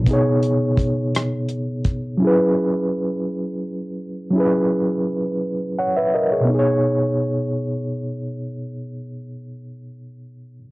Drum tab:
HH |xxxxxx|------|------|------|
SD |---r--|------|------|------|
BD |o-o--o|------|------|------|

HH |------|
SD |------|
BD |------|